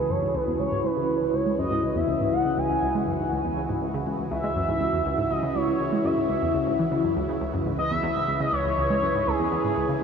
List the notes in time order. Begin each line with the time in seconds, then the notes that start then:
Already playing: C#2 C#3 E3 E4 F#4 B4
0.10 F#2 C#5
0.22 G#2
0.35 C#2 B4
0.47 E2
0.59 C#2 C#5
0.72 G#2
0.84 C#2 B4
0.97 C#3
1.09 C#2
1.21 C#2
1.34 C#2 C#5
1.46 G#3
1.59 F#2 D#5
1.71 G#2
1.83 C#2
1.96 E2 E5
2.08 C#2
2.21 G#2
2.33 C#2 F#5
2.45 C#3
2.58 C#2 G#5
2.70 C#2
2.83 C#2
2.95 G#3
3.07 F#2
3.20 G#2
3.32 C#2
3.45 E2
3.57 C#2
3.69 G#2
3.82 C#2
3.94 C#3
4.06 C#2
4.19 C#2
4.31 C#2 E5
4.44 G#3
4.56 F#2
4.69 G#2
4.81 C#2
4.93 E2
5.06 C#2
5.18 G#2
5.30 C#2 D#5
5.43 C#3
5.55 C#2 C#5
5.68 C#2
5.80 C#2
5.92 G#3
6.05 F#2 E5
6.17 G#2
6.30 C#2
6.42 E2
6.55 C#2
6.67 G#2
6.79 E3
6.92 C#3
7.04 F#2
7.17 C#2
7.29 C#3
7.41 C#2
7.54 F#2 B4
7.66 G#2
7.78 C#2 D#5
7.91 E2 E5
8.03 E2
8.16 G#2
8.28 C#2
8.40 C#3 D#5
8.52 C#2 C#5
8.65 C#2
8.78 C#2
8.90 G#3
9.02 F#2
9.15 G#2
9.27 C#2 G#4
9.40 E2
9.52 E2
9.64 G#2
9.77 C#2
9.89 C#3